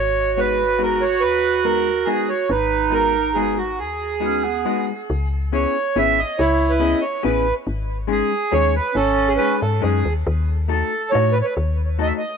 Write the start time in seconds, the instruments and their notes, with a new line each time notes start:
Already playing: fm bass G#1, clarinet F#4, accordion C#5
0.37 hollow-body jazz guitar G#3 B3 D#4 F#4, accordion B4
0.79 hollow-body jazz guitar G#3 B3 D#4 F#4
0.83 accordion A#4
1.01 accordion C#5
1.20 fm bass D#2, accordion B4
1.64 hollow-body jazz guitar G#3 B3 D#4 F#4, accordion A#4
2.05 hollow-body jazz guitar G#3 B3 D#4 F#4, accordion G#4
2.29 accordion C#5
2.49 fm bass G#1, clarinet D#4, accordion B4
2.90 hollow-body jazz guitar G#3 B3 D#4 F#4, accordion A#4
3.34 hollow-body jazz guitar G#3 B3 D#4 F#4, accordion G#4
3.57 accordion F#4
3.79 fm bass D#2, accordion G#4
4.20 hollow-body jazz guitar G#3 B3 D#4 F#4, clarinet C#4
4.44 clarinet B3
4.65 hollow-body jazz guitar G#3 B3 D#4 F#4
5.10 fm bass C#2
5.52 hollow-body jazz guitar B3 C#4 E4 G#4, accordion C#5
5.96 fm bass G#1, hollow-body jazz guitar B3 C#4 E4 G#4, accordion E5
6.19 accordion D#5
6.38 fm bass C#2, accordion E4 C#5
6.70 accordion B4
6.79 hollow-body jazz guitar B3 C#4 E4 G#4, accordion D#5
7.01 accordion C#5
7.23 fm bass A1, hollow-body jazz guitar B3 C#4 E4 G#4, accordion B4
7.67 fm bass G#1
8.07 hollow-body jazz guitar G#3 C#4 D#4 G#4
8.12 accordion G#4
8.51 fm bass D#2, hollow-body jazz guitar G#3 C#4 D#4 G#4, accordion C#5
8.76 accordion B4
8.95 fm bass G#1, accordion C#4 A4
9.28 accordion G#4
9.37 hollow-body jazz guitar G#3 C#4 D#4 G#4, accordion B4
9.61 fm bass G#2, accordion A4
9.81 fm bass F#2, hollow-body jazz guitar G#3 C#4 D#4 G#4, accordion G#4
10.05 fm bass D#2
10.27 fm bass D#2
10.68 hollow-body jazz guitar A3 D#4 F#4 A4, accordion A4
11.11 hollow-body jazz guitar A3 D#4 F#4 A4, accordion C#5
11.15 fm bass A2
11.32 accordion B4
11.41 accordion B4 C#5
11.57 fm bass D#2
11.99 hollow-body jazz guitar A3 D#4 F#4 A4, accordion D#5
12.06 accordion E5
12.18 accordion D#5